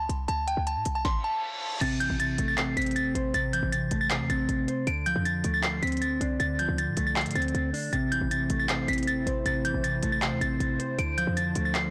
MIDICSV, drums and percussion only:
0, 0, Header, 1, 2, 480
1, 0, Start_track
1, 0, Key_signature, 0, "minor"
1, 0, Tempo, 382166
1, 357, Time_signature, 4, 2, 24, 8
1, 14951, End_track
2, 0, Start_track
2, 0, Title_t, "Drums"
2, 120, Note_on_c, 9, 42, 73
2, 245, Note_off_c, 9, 42, 0
2, 357, Note_on_c, 9, 42, 67
2, 482, Note_off_c, 9, 42, 0
2, 598, Note_on_c, 9, 42, 80
2, 724, Note_off_c, 9, 42, 0
2, 839, Note_on_c, 9, 42, 77
2, 965, Note_off_c, 9, 42, 0
2, 1072, Note_on_c, 9, 42, 92
2, 1198, Note_off_c, 9, 42, 0
2, 1317, Note_on_c, 9, 36, 109
2, 1317, Note_on_c, 9, 38, 91
2, 1442, Note_off_c, 9, 38, 0
2, 1443, Note_off_c, 9, 36, 0
2, 2277, Note_on_c, 9, 49, 108
2, 2278, Note_on_c, 9, 42, 69
2, 2403, Note_off_c, 9, 42, 0
2, 2403, Note_off_c, 9, 49, 0
2, 2518, Note_on_c, 9, 42, 82
2, 2644, Note_off_c, 9, 42, 0
2, 2759, Note_on_c, 9, 42, 84
2, 2885, Note_off_c, 9, 42, 0
2, 2993, Note_on_c, 9, 42, 89
2, 3119, Note_off_c, 9, 42, 0
2, 3236, Note_on_c, 9, 42, 73
2, 3237, Note_on_c, 9, 39, 125
2, 3362, Note_off_c, 9, 39, 0
2, 3362, Note_off_c, 9, 42, 0
2, 3478, Note_on_c, 9, 42, 68
2, 3538, Note_off_c, 9, 42, 0
2, 3538, Note_on_c, 9, 42, 57
2, 3597, Note_off_c, 9, 42, 0
2, 3597, Note_on_c, 9, 42, 47
2, 3657, Note_off_c, 9, 42, 0
2, 3657, Note_on_c, 9, 42, 39
2, 3717, Note_off_c, 9, 42, 0
2, 3717, Note_on_c, 9, 42, 64
2, 3843, Note_off_c, 9, 42, 0
2, 3961, Note_on_c, 9, 42, 76
2, 4086, Note_off_c, 9, 42, 0
2, 4197, Note_on_c, 9, 42, 70
2, 4323, Note_off_c, 9, 42, 0
2, 4438, Note_on_c, 9, 42, 83
2, 4563, Note_off_c, 9, 42, 0
2, 4679, Note_on_c, 9, 42, 81
2, 4805, Note_off_c, 9, 42, 0
2, 4912, Note_on_c, 9, 42, 99
2, 5037, Note_off_c, 9, 42, 0
2, 5155, Note_on_c, 9, 39, 121
2, 5155, Note_on_c, 9, 42, 71
2, 5281, Note_off_c, 9, 39, 0
2, 5281, Note_off_c, 9, 42, 0
2, 5398, Note_on_c, 9, 42, 62
2, 5524, Note_off_c, 9, 42, 0
2, 5637, Note_on_c, 9, 42, 62
2, 5763, Note_off_c, 9, 42, 0
2, 5880, Note_on_c, 9, 42, 69
2, 6006, Note_off_c, 9, 42, 0
2, 6117, Note_on_c, 9, 42, 67
2, 6243, Note_off_c, 9, 42, 0
2, 6358, Note_on_c, 9, 42, 79
2, 6483, Note_off_c, 9, 42, 0
2, 6600, Note_on_c, 9, 42, 81
2, 6725, Note_off_c, 9, 42, 0
2, 6833, Note_on_c, 9, 42, 90
2, 6958, Note_off_c, 9, 42, 0
2, 7076, Note_on_c, 9, 39, 127
2, 7076, Note_on_c, 9, 42, 71
2, 7201, Note_off_c, 9, 42, 0
2, 7202, Note_off_c, 9, 39, 0
2, 7317, Note_on_c, 9, 42, 64
2, 7376, Note_off_c, 9, 42, 0
2, 7376, Note_on_c, 9, 42, 56
2, 7437, Note_off_c, 9, 42, 0
2, 7437, Note_on_c, 9, 42, 45
2, 7497, Note_off_c, 9, 42, 0
2, 7497, Note_on_c, 9, 42, 37
2, 7557, Note_off_c, 9, 42, 0
2, 7557, Note_on_c, 9, 42, 66
2, 7683, Note_off_c, 9, 42, 0
2, 7800, Note_on_c, 9, 42, 77
2, 7926, Note_off_c, 9, 42, 0
2, 8038, Note_on_c, 9, 42, 67
2, 8163, Note_off_c, 9, 42, 0
2, 8278, Note_on_c, 9, 42, 80
2, 8403, Note_off_c, 9, 42, 0
2, 8520, Note_on_c, 9, 42, 82
2, 8645, Note_off_c, 9, 42, 0
2, 8752, Note_on_c, 9, 42, 95
2, 8878, Note_off_c, 9, 42, 0
2, 8996, Note_on_c, 9, 39, 127
2, 8996, Note_on_c, 9, 42, 45
2, 9057, Note_off_c, 9, 42, 0
2, 9057, Note_on_c, 9, 42, 54
2, 9117, Note_off_c, 9, 42, 0
2, 9117, Note_on_c, 9, 42, 68
2, 9121, Note_off_c, 9, 39, 0
2, 9177, Note_off_c, 9, 42, 0
2, 9177, Note_on_c, 9, 42, 77
2, 9238, Note_off_c, 9, 42, 0
2, 9238, Note_on_c, 9, 42, 65
2, 9318, Note_off_c, 9, 42, 0
2, 9318, Note_on_c, 9, 42, 52
2, 9398, Note_off_c, 9, 42, 0
2, 9398, Note_on_c, 9, 42, 38
2, 9479, Note_off_c, 9, 42, 0
2, 9479, Note_on_c, 9, 42, 63
2, 9604, Note_off_c, 9, 42, 0
2, 9721, Note_on_c, 9, 46, 53
2, 9847, Note_off_c, 9, 46, 0
2, 9958, Note_on_c, 9, 42, 69
2, 10084, Note_off_c, 9, 42, 0
2, 10198, Note_on_c, 9, 42, 82
2, 10324, Note_off_c, 9, 42, 0
2, 10440, Note_on_c, 9, 42, 80
2, 10565, Note_off_c, 9, 42, 0
2, 10673, Note_on_c, 9, 42, 86
2, 10799, Note_off_c, 9, 42, 0
2, 10916, Note_on_c, 9, 42, 72
2, 10917, Note_on_c, 9, 39, 124
2, 11042, Note_off_c, 9, 39, 0
2, 11042, Note_off_c, 9, 42, 0
2, 11157, Note_on_c, 9, 42, 63
2, 11218, Note_off_c, 9, 42, 0
2, 11218, Note_on_c, 9, 42, 54
2, 11278, Note_off_c, 9, 42, 0
2, 11278, Note_on_c, 9, 42, 48
2, 11338, Note_off_c, 9, 42, 0
2, 11338, Note_on_c, 9, 42, 39
2, 11399, Note_off_c, 9, 42, 0
2, 11399, Note_on_c, 9, 42, 62
2, 11524, Note_off_c, 9, 42, 0
2, 11641, Note_on_c, 9, 42, 76
2, 11767, Note_off_c, 9, 42, 0
2, 11878, Note_on_c, 9, 42, 68
2, 12003, Note_off_c, 9, 42, 0
2, 12119, Note_on_c, 9, 42, 80
2, 12245, Note_off_c, 9, 42, 0
2, 12360, Note_on_c, 9, 42, 79
2, 12485, Note_off_c, 9, 42, 0
2, 12593, Note_on_c, 9, 42, 97
2, 12718, Note_off_c, 9, 42, 0
2, 12837, Note_on_c, 9, 39, 123
2, 12837, Note_on_c, 9, 42, 75
2, 12962, Note_off_c, 9, 42, 0
2, 12963, Note_off_c, 9, 39, 0
2, 13080, Note_on_c, 9, 42, 65
2, 13206, Note_off_c, 9, 42, 0
2, 13319, Note_on_c, 9, 42, 64
2, 13445, Note_off_c, 9, 42, 0
2, 13562, Note_on_c, 9, 42, 70
2, 13687, Note_off_c, 9, 42, 0
2, 13798, Note_on_c, 9, 42, 66
2, 13924, Note_off_c, 9, 42, 0
2, 14039, Note_on_c, 9, 42, 79
2, 14165, Note_off_c, 9, 42, 0
2, 14280, Note_on_c, 9, 42, 82
2, 14405, Note_off_c, 9, 42, 0
2, 14512, Note_on_c, 9, 42, 87
2, 14638, Note_off_c, 9, 42, 0
2, 14755, Note_on_c, 9, 39, 127
2, 14755, Note_on_c, 9, 42, 72
2, 14881, Note_off_c, 9, 39, 0
2, 14881, Note_off_c, 9, 42, 0
2, 14951, End_track
0, 0, End_of_file